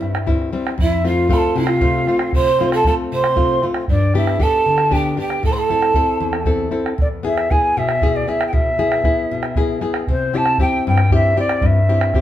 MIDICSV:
0, 0, Header, 1, 5, 480
1, 0, Start_track
1, 0, Tempo, 515907
1, 738, Time_signature, 6, 3, 24, 8
1, 11361, End_track
2, 0, Start_track
2, 0, Title_t, "Quena"
2, 0, Program_c, 0, 77
2, 0, Note_on_c, 0, 76, 87
2, 266, Note_off_c, 0, 76, 0
2, 758, Note_on_c, 0, 76, 85
2, 972, Note_off_c, 0, 76, 0
2, 1002, Note_on_c, 0, 77, 86
2, 1240, Note_on_c, 0, 83, 83
2, 1254, Note_off_c, 0, 77, 0
2, 1281, Note_on_c, 0, 81, 90
2, 1290, Note_off_c, 0, 83, 0
2, 1467, Note_on_c, 0, 77, 95
2, 1481, Note_off_c, 0, 81, 0
2, 2182, Note_off_c, 0, 77, 0
2, 2190, Note_on_c, 0, 84, 97
2, 2519, Note_off_c, 0, 84, 0
2, 2567, Note_on_c, 0, 81, 93
2, 2665, Note_off_c, 0, 81, 0
2, 2686, Note_on_c, 0, 81, 90
2, 2742, Note_off_c, 0, 81, 0
2, 2937, Note_on_c, 0, 84, 102
2, 3421, Note_off_c, 0, 84, 0
2, 3631, Note_on_c, 0, 74, 87
2, 3848, Note_off_c, 0, 74, 0
2, 3877, Note_on_c, 0, 76, 89
2, 4114, Note_on_c, 0, 81, 100
2, 4128, Note_off_c, 0, 76, 0
2, 4588, Note_on_c, 0, 79, 94
2, 4602, Note_off_c, 0, 81, 0
2, 4823, Note_off_c, 0, 79, 0
2, 4843, Note_on_c, 0, 79, 86
2, 5055, Note_off_c, 0, 79, 0
2, 5081, Note_on_c, 0, 81, 74
2, 5143, Note_on_c, 0, 84, 68
2, 5157, Note_off_c, 0, 81, 0
2, 5197, Note_on_c, 0, 81, 97
2, 5211, Note_off_c, 0, 84, 0
2, 6022, Note_off_c, 0, 81, 0
2, 6527, Note_on_c, 0, 74, 87
2, 6583, Note_off_c, 0, 74, 0
2, 6760, Note_on_c, 0, 76, 90
2, 6987, Note_on_c, 0, 80, 98
2, 7001, Note_off_c, 0, 76, 0
2, 7238, Note_on_c, 0, 76, 99
2, 7252, Note_off_c, 0, 80, 0
2, 7594, Note_on_c, 0, 74, 81
2, 7608, Note_off_c, 0, 76, 0
2, 7715, Note_on_c, 0, 76, 90
2, 7729, Note_off_c, 0, 74, 0
2, 7882, Note_off_c, 0, 76, 0
2, 7886, Note_on_c, 0, 79, 64
2, 7944, Note_on_c, 0, 76, 93
2, 7958, Note_off_c, 0, 79, 0
2, 9142, Note_off_c, 0, 76, 0
2, 9399, Note_on_c, 0, 72, 97
2, 9644, Note_on_c, 0, 81, 106
2, 9658, Note_off_c, 0, 72, 0
2, 9866, Note_off_c, 0, 81, 0
2, 9871, Note_on_c, 0, 79, 95
2, 10090, Note_off_c, 0, 79, 0
2, 10123, Note_on_c, 0, 79, 97
2, 10336, Note_off_c, 0, 79, 0
2, 10366, Note_on_c, 0, 76, 91
2, 10578, Note_off_c, 0, 76, 0
2, 10598, Note_on_c, 0, 74, 88
2, 10853, Note_on_c, 0, 76, 88
2, 10867, Note_off_c, 0, 74, 0
2, 11361, Note_off_c, 0, 76, 0
2, 11361, End_track
3, 0, Start_track
3, 0, Title_t, "Pan flute"
3, 0, Program_c, 1, 75
3, 0, Note_on_c, 1, 64, 74
3, 272, Note_off_c, 1, 64, 0
3, 757, Note_on_c, 1, 64, 80
3, 971, Note_off_c, 1, 64, 0
3, 986, Note_on_c, 1, 65, 70
3, 1223, Note_on_c, 1, 69, 74
3, 1237, Note_off_c, 1, 65, 0
3, 1462, Note_on_c, 1, 64, 81
3, 1476, Note_off_c, 1, 69, 0
3, 1583, Note_off_c, 1, 64, 0
3, 1583, Note_on_c, 1, 65, 81
3, 2177, Note_off_c, 1, 65, 0
3, 2183, Note_on_c, 1, 72, 90
3, 2515, Note_off_c, 1, 72, 0
3, 2539, Note_on_c, 1, 69, 82
3, 2650, Note_off_c, 1, 69, 0
3, 2671, Note_on_c, 1, 69, 75
3, 2727, Note_off_c, 1, 69, 0
3, 2912, Note_on_c, 1, 72, 93
3, 3408, Note_off_c, 1, 72, 0
3, 3633, Note_on_c, 1, 62, 73
3, 3849, Note_off_c, 1, 62, 0
3, 3870, Note_on_c, 1, 64, 73
3, 4100, Note_on_c, 1, 69, 84
3, 4114, Note_off_c, 1, 64, 0
3, 4593, Note_on_c, 1, 67, 73
3, 4607, Note_off_c, 1, 69, 0
3, 4825, Note_off_c, 1, 67, 0
3, 4831, Note_on_c, 1, 67, 68
3, 5048, Note_off_c, 1, 67, 0
3, 5068, Note_on_c, 1, 69, 71
3, 5134, Note_on_c, 1, 72, 60
3, 5148, Note_off_c, 1, 69, 0
3, 5169, Note_on_c, 1, 69, 77
3, 5183, Note_off_c, 1, 72, 0
3, 6009, Note_off_c, 1, 69, 0
3, 11361, End_track
4, 0, Start_track
4, 0, Title_t, "Nylon-string guitar"
4, 0, Program_c, 2, 24
4, 0, Note_on_c, 2, 55, 49
4, 0, Note_on_c, 2, 60, 44
4, 0, Note_on_c, 2, 64, 56
4, 7, Note_on_c, 2, 43, 65
4, 157, Note_off_c, 2, 60, 0
4, 158, Note_off_c, 2, 55, 0
4, 158, Note_off_c, 2, 64, 0
4, 247, Note_on_c, 2, 55, 51
4, 251, Note_on_c, 2, 60, 45
4, 254, Note_on_c, 2, 64, 59
4, 478, Note_off_c, 2, 43, 0
4, 479, Note_off_c, 2, 55, 0
4, 482, Note_off_c, 2, 64, 0
4, 485, Note_off_c, 2, 60, 0
4, 490, Note_on_c, 2, 55, 47
4, 494, Note_on_c, 2, 64, 50
4, 496, Note_on_c, 2, 60, 42
4, 685, Note_off_c, 2, 55, 0
4, 687, Note_off_c, 2, 64, 0
4, 689, Note_off_c, 2, 60, 0
4, 723, Note_on_c, 2, 41, 69
4, 971, Note_on_c, 2, 57, 50
4, 976, Note_on_c, 2, 60, 47
4, 980, Note_on_c, 2, 65, 57
4, 1192, Note_off_c, 2, 57, 0
4, 1196, Note_off_c, 2, 41, 0
4, 1198, Note_off_c, 2, 60, 0
4, 1203, Note_off_c, 2, 65, 0
4, 1203, Note_on_c, 2, 57, 55
4, 1210, Note_on_c, 2, 60, 45
4, 1214, Note_on_c, 2, 65, 60
4, 1448, Note_on_c, 2, 48, 69
4, 1593, Note_off_c, 2, 57, 0
4, 1597, Note_off_c, 2, 60, 0
4, 1599, Note_off_c, 2, 65, 0
4, 1686, Note_on_c, 2, 57, 54
4, 1687, Note_on_c, 2, 60, 46
4, 1689, Note_on_c, 2, 65, 55
4, 1918, Note_off_c, 2, 48, 0
4, 1923, Note_off_c, 2, 57, 0
4, 1925, Note_off_c, 2, 60, 0
4, 1930, Note_off_c, 2, 65, 0
4, 1934, Note_on_c, 2, 57, 43
4, 1938, Note_on_c, 2, 60, 42
4, 1941, Note_on_c, 2, 65, 50
4, 2180, Note_on_c, 2, 48, 67
4, 2320, Note_off_c, 2, 57, 0
4, 2321, Note_off_c, 2, 60, 0
4, 2324, Note_off_c, 2, 65, 0
4, 2420, Note_on_c, 2, 57, 55
4, 2424, Note_on_c, 2, 60, 49
4, 2429, Note_on_c, 2, 65, 57
4, 2644, Note_off_c, 2, 48, 0
4, 2651, Note_off_c, 2, 57, 0
4, 2654, Note_off_c, 2, 60, 0
4, 2661, Note_off_c, 2, 65, 0
4, 2661, Note_on_c, 2, 57, 52
4, 2667, Note_on_c, 2, 60, 49
4, 2672, Note_on_c, 2, 65, 58
4, 2903, Note_on_c, 2, 48, 70
4, 3045, Note_off_c, 2, 57, 0
4, 3046, Note_off_c, 2, 60, 0
4, 3050, Note_off_c, 2, 65, 0
4, 3125, Note_on_c, 2, 57, 52
4, 3130, Note_on_c, 2, 60, 49
4, 3134, Note_on_c, 2, 65, 58
4, 3364, Note_off_c, 2, 57, 0
4, 3365, Note_off_c, 2, 60, 0
4, 3366, Note_off_c, 2, 48, 0
4, 3371, Note_off_c, 2, 65, 0
4, 3375, Note_on_c, 2, 57, 46
4, 3377, Note_on_c, 2, 60, 43
4, 3382, Note_on_c, 2, 65, 51
4, 3569, Note_off_c, 2, 57, 0
4, 3569, Note_off_c, 2, 60, 0
4, 3573, Note_off_c, 2, 65, 0
4, 3622, Note_on_c, 2, 43, 65
4, 3857, Note_on_c, 2, 59, 55
4, 3863, Note_on_c, 2, 62, 51
4, 3863, Note_on_c, 2, 67, 60
4, 4075, Note_off_c, 2, 59, 0
4, 4080, Note_off_c, 2, 62, 0
4, 4080, Note_off_c, 2, 67, 0
4, 4086, Note_off_c, 2, 43, 0
4, 4086, Note_on_c, 2, 59, 50
4, 4091, Note_on_c, 2, 62, 48
4, 4092, Note_on_c, 2, 67, 56
4, 4337, Note_on_c, 2, 50, 67
4, 4475, Note_off_c, 2, 59, 0
4, 4478, Note_off_c, 2, 62, 0
4, 4478, Note_off_c, 2, 67, 0
4, 4568, Note_on_c, 2, 59, 57
4, 4569, Note_on_c, 2, 62, 50
4, 4576, Note_on_c, 2, 67, 62
4, 4799, Note_off_c, 2, 59, 0
4, 4803, Note_off_c, 2, 50, 0
4, 4805, Note_off_c, 2, 62, 0
4, 4807, Note_off_c, 2, 67, 0
4, 4811, Note_on_c, 2, 59, 49
4, 4814, Note_on_c, 2, 62, 45
4, 4822, Note_on_c, 2, 67, 51
4, 5006, Note_off_c, 2, 59, 0
4, 5009, Note_off_c, 2, 62, 0
4, 5010, Note_off_c, 2, 67, 0
4, 5052, Note_on_c, 2, 45, 67
4, 5302, Note_on_c, 2, 60, 50
4, 5307, Note_on_c, 2, 64, 48
4, 5308, Note_on_c, 2, 69, 59
4, 5521, Note_off_c, 2, 45, 0
4, 5525, Note_off_c, 2, 60, 0
4, 5528, Note_off_c, 2, 64, 0
4, 5532, Note_off_c, 2, 69, 0
4, 5535, Note_on_c, 2, 60, 50
4, 5542, Note_on_c, 2, 64, 44
4, 5543, Note_on_c, 2, 69, 54
4, 5773, Note_on_c, 2, 40, 64
4, 5921, Note_off_c, 2, 60, 0
4, 5923, Note_off_c, 2, 64, 0
4, 5925, Note_off_c, 2, 69, 0
4, 6009, Note_on_c, 2, 60, 52
4, 6014, Note_on_c, 2, 64, 50
4, 6018, Note_on_c, 2, 69, 55
4, 6233, Note_off_c, 2, 60, 0
4, 6237, Note_off_c, 2, 64, 0
4, 6240, Note_off_c, 2, 69, 0
4, 6241, Note_off_c, 2, 40, 0
4, 6244, Note_on_c, 2, 60, 42
4, 6248, Note_on_c, 2, 64, 41
4, 6252, Note_on_c, 2, 69, 45
4, 6442, Note_off_c, 2, 60, 0
4, 6444, Note_off_c, 2, 64, 0
4, 6446, Note_off_c, 2, 69, 0
4, 6495, Note_on_c, 2, 40, 67
4, 6729, Note_on_c, 2, 59, 55
4, 6739, Note_on_c, 2, 64, 46
4, 6742, Note_on_c, 2, 68, 57
4, 6962, Note_off_c, 2, 40, 0
4, 6977, Note_off_c, 2, 59, 0
4, 6981, Note_off_c, 2, 64, 0
4, 6983, Note_off_c, 2, 68, 0
4, 6988, Note_on_c, 2, 59, 49
4, 6992, Note_on_c, 2, 64, 48
4, 6995, Note_on_c, 2, 68, 57
4, 7231, Note_on_c, 2, 47, 66
4, 7368, Note_off_c, 2, 59, 0
4, 7371, Note_off_c, 2, 64, 0
4, 7372, Note_off_c, 2, 68, 0
4, 7463, Note_on_c, 2, 59, 56
4, 7470, Note_on_c, 2, 64, 47
4, 7473, Note_on_c, 2, 68, 61
4, 7685, Note_off_c, 2, 59, 0
4, 7691, Note_off_c, 2, 47, 0
4, 7693, Note_off_c, 2, 64, 0
4, 7696, Note_on_c, 2, 59, 46
4, 7698, Note_off_c, 2, 68, 0
4, 7704, Note_on_c, 2, 64, 43
4, 7709, Note_on_c, 2, 68, 49
4, 7935, Note_on_c, 2, 47, 63
4, 8082, Note_off_c, 2, 59, 0
4, 8086, Note_off_c, 2, 64, 0
4, 8089, Note_off_c, 2, 68, 0
4, 8173, Note_on_c, 2, 59, 53
4, 8178, Note_on_c, 2, 64, 47
4, 8179, Note_on_c, 2, 68, 61
4, 8403, Note_off_c, 2, 47, 0
4, 8405, Note_off_c, 2, 59, 0
4, 8407, Note_off_c, 2, 68, 0
4, 8409, Note_off_c, 2, 64, 0
4, 8415, Note_on_c, 2, 59, 54
4, 8419, Note_on_c, 2, 68, 57
4, 8421, Note_on_c, 2, 64, 48
4, 8667, Note_on_c, 2, 47, 72
4, 8802, Note_off_c, 2, 59, 0
4, 8803, Note_off_c, 2, 68, 0
4, 8804, Note_off_c, 2, 64, 0
4, 8900, Note_on_c, 2, 59, 51
4, 8904, Note_on_c, 2, 64, 51
4, 8908, Note_on_c, 2, 68, 58
4, 9119, Note_off_c, 2, 59, 0
4, 9122, Note_off_c, 2, 64, 0
4, 9128, Note_off_c, 2, 68, 0
4, 9129, Note_off_c, 2, 47, 0
4, 9130, Note_on_c, 2, 59, 48
4, 9135, Note_on_c, 2, 64, 43
4, 9139, Note_on_c, 2, 68, 50
4, 9326, Note_off_c, 2, 59, 0
4, 9328, Note_off_c, 2, 64, 0
4, 9332, Note_off_c, 2, 68, 0
4, 9384, Note_on_c, 2, 48, 67
4, 9615, Note_on_c, 2, 60, 57
4, 9621, Note_on_c, 2, 64, 49
4, 9628, Note_on_c, 2, 67, 62
4, 9847, Note_off_c, 2, 60, 0
4, 9848, Note_off_c, 2, 48, 0
4, 9853, Note_off_c, 2, 64, 0
4, 9858, Note_off_c, 2, 67, 0
4, 9859, Note_on_c, 2, 60, 57
4, 9864, Note_on_c, 2, 64, 47
4, 9869, Note_on_c, 2, 67, 62
4, 10114, Note_on_c, 2, 43, 72
4, 10244, Note_off_c, 2, 60, 0
4, 10247, Note_off_c, 2, 64, 0
4, 10250, Note_off_c, 2, 67, 0
4, 10344, Note_on_c, 2, 60, 50
4, 10348, Note_on_c, 2, 64, 47
4, 10351, Note_on_c, 2, 67, 63
4, 10566, Note_off_c, 2, 60, 0
4, 10567, Note_off_c, 2, 64, 0
4, 10569, Note_off_c, 2, 67, 0
4, 10574, Note_off_c, 2, 43, 0
4, 10576, Note_on_c, 2, 60, 50
4, 10578, Note_on_c, 2, 64, 39
4, 10583, Note_on_c, 2, 67, 52
4, 10814, Note_on_c, 2, 43, 70
4, 10963, Note_off_c, 2, 60, 0
4, 10964, Note_off_c, 2, 64, 0
4, 10965, Note_off_c, 2, 67, 0
4, 11062, Note_on_c, 2, 60, 51
4, 11066, Note_on_c, 2, 64, 49
4, 11069, Note_on_c, 2, 67, 61
4, 11284, Note_off_c, 2, 43, 0
4, 11289, Note_off_c, 2, 60, 0
4, 11295, Note_off_c, 2, 64, 0
4, 11300, Note_on_c, 2, 60, 50
4, 11302, Note_off_c, 2, 67, 0
4, 11306, Note_on_c, 2, 64, 45
4, 11313, Note_on_c, 2, 67, 58
4, 11361, Note_off_c, 2, 60, 0
4, 11361, Note_off_c, 2, 64, 0
4, 11361, Note_off_c, 2, 67, 0
4, 11361, End_track
5, 0, Start_track
5, 0, Title_t, "Bombo"
5, 22, Note_on_c, 9, 37, 23
5, 115, Note_off_c, 9, 37, 0
5, 138, Note_on_c, 9, 37, 59
5, 231, Note_off_c, 9, 37, 0
5, 258, Note_on_c, 9, 37, 24
5, 258, Note_on_c, 9, 43, 72
5, 351, Note_off_c, 9, 37, 0
5, 351, Note_off_c, 9, 43, 0
5, 388, Note_on_c, 9, 37, 23
5, 481, Note_off_c, 9, 37, 0
5, 620, Note_on_c, 9, 37, 60
5, 713, Note_off_c, 9, 37, 0
5, 734, Note_on_c, 9, 43, 78
5, 827, Note_off_c, 9, 43, 0
5, 973, Note_on_c, 9, 37, 25
5, 1066, Note_off_c, 9, 37, 0
5, 1201, Note_on_c, 9, 43, 73
5, 1294, Note_off_c, 9, 43, 0
5, 1552, Note_on_c, 9, 37, 61
5, 1646, Note_off_c, 9, 37, 0
5, 1683, Note_on_c, 9, 43, 74
5, 1777, Note_off_c, 9, 43, 0
5, 1929, Note_on_c, 9, 37, 26
5, 2022, Note_off_c, 9, 37, 0
5, 2040, Note_on_c, 9, 37, 61
5, 2133, Note_off_c, 9, 37, 0
5, 2163, Note_on_c, 9, 43, 75
5, 2256, Note_off_c, 9, 43, 0
5, 2407, Note_on_c, 9, 37, 23
5, 2500, Note_off_c, 9, 37, 0
5, 2533, Note_on_c, 9, 37, 55
5, 2626, Note_off_c, 9, 37, 0
5, 2645, Note_on_c, 9, 43, 79
5, 2738, Note_off_c, 9, 43, 0
5, 3013, Note_on_c, 9, 37, 62
5, 3106, Note_off_c, 9, 37, 0
5, 3131, Note_on_c, 9, 43, 78
5, 3224, Note_off_c, 9, 43, 0
5, 3368, Note_on_c, 9, 37, 26
5, 3461, Note_off_c, 9, 37, 0
5, 3483, Note_on_c, 9, 37, 58
5, 3576, Note_off_c, 9, 37, 0
5, 3609, Note_on_c, 9, 43, 77
5, 3702, Note_off_c, 9, 43, 0
5, 3850, Note_on_c, 9, 37, 25
5, 3943, Note_off_c, 9, 37, 0
5, 3976, Note_on_c, 9, 37, 57
5, 4069, Note_off_c, 9, 37, 0
5, 4089, Note_on_c, 9, 43, 74
5, 4183, Note_off_c, 9, 43, 0
5, 4445, Note_on_c, 9, 37, 56
5, 4538, Note_off_c, 9, 37, 0
5, 4569, Note_on_c, 9, 43, 63
5, 4662, Note_off_c, 9, 43, 0
5, 4810, Note_on_c, 9, 37, 21
5, 4903, Note_off_c, 9, 37, 0
5, 4933, Note_on_c, 9, 37, 50
5, 5026, Note_off_c, 9, 37, 0
5, 5058, Note_on_c, 9, 37, 20
5, 5058, Note_on_c, 9, 43, 70
5, 5151, Note_off_c, 9, 37, 0
5, 5151, Note_off_c, 9, 43, 0
5, 5175, Note_on_c, 9, 37, 21
5, 5268, Note_off_c, 9, 37, 0
5, 5297, Note_on_c, 9, 37, 22
5, 5390, Note_off_c, 9, 37, 0
5, 5419, Note_on_c, 9, 37, 53
5, 5512, Note_off_c, 9, 37, 0
5, 5527, Note_on_c, 9, 43, 68
5, 5620, Note_off_c, 9, 43, 0
5, 5888, Note_on_c, 9, 37, 54
5, 5981, Note_off_c, 9, 37, 0
5, 6002, Note_on_c, 9, 43, 66
5, 6095, Note_off_c, 9, 43, 0
5, 6256, Note_on_c, 9, 37, 23
5, 6349, Note_off_c, 9, 37, 0
5, 6383, Note_on_c, 9, 37, 54
5, 6476, Note_off_c, 9, 37, 0
5, 6498, Note_on_c, 9, 43, 87
5, 6591, Note_off_c, 9, 43, 0
5, 6742, Note_on_c, 9, 37, 25
5, 6835, Note_off_c, 9, 37, 0
5, 6862, Note_on_c, 9, 37, 62
5, 6955, Note_off_c, 9, 37, 0
5, 6984, Note_on_c, 9, 43, 86
5, 7077, Note_off_c, 9, 43, 0
5, 7337, Note_on_c, 9, 37, 64
5, 7430, Note_off_c, 9, 37, 0
5, 7458, Note_on_c, 9, 43, 79
5, 7551, Note_off_c, 9, 43, 0
5, 7710, Note_on_c, 9, 37, 26
5, 7803, Note_off_c, 9, 37, 0
5, 7822, Note_on_c, 9, 37, 61
5, 7915, Note_off_c, 9, 37, 0
5, 7939, Note_on_c, 9, 43, 82
5, 8032, Note_off_c, 9, 43, 0
5, 8183, Note_on_c, 9, 37, 25
5, 8276, Note_off_c, 9, 37, 0
5, 8297, Note_on_c, 9, 37, 62
5, 8390, Note_off_c, 9, 37, 0
5, 8407, Note_on_c, 9, 43, 76
5, 8500, Note_off_c, 9, 43, 0
5, 8771, Note_on_c, 9, 37, 61
5, 8864, Note_off_c, 9, 37, 0
5, 8889, Note_on_c, 9, 43, 72
5, 8982, Note_off_c, 9, 43, 0
5, 9137, Note_on_c, 9, 37, 25
5, 9230, Note_off_c, 9, 37, 0
5, 9247, Note_on_c, 9, 37, 58
5, 9340, Note_off_c, 9, 37, 0
5, 9372, Note_on_c, 9, 43, 72
5, 9465, Note_off_c, 9, 43, 0
5, 9617, Note_on_c, 9, 37, 25
5, 9710, Note_off_c, 9, 37, 0
5, 9728, Note_on_c, 9, 37, 57
5, 9821, Note_off_c, 9, 37, 0
5, 9846, Note_on_c, 9, 43, 83
5, 9939, Note_off_c, 9, 43, 0
5, 10211, Note_on_c, 9, 37, 64
5, 10304, Note_off_c, 9, 37, 0
5, 10329, Note_on_c, 9, 43, 82
5, 10422, Note_off_c, 9, 43, 0
5, 10575, Note_on_c, 9, 37, 28
5, 10668, Note_off_c, 9, 37, 0
5, 10694, Note_on_c, 9, 37, 66
5, 10787, Note_off_c, 9, 37, 0
5, 10805, Note_on_c, 9, 43, 87
5, 10898, Note_off_c, 9, 43, 0
5, 11063, Note_on_c, 9, 37, 25
5, 11156, Note_off_c, 9, 37, 0
5, 11177, Note_on_c, 9, 37, 65
5, 11270, Note_off_c, 9, 37, 0
5, 11293, Note_on_c, 9, 37, 27
5, 11293, Note_on_c, 9, 43, 79
5, 11361, Note_off_c, 9, 37, 0
5, 11361, Note_off_c, 9, 43, 0
5, 11361, End_track
0, 0, End_of_file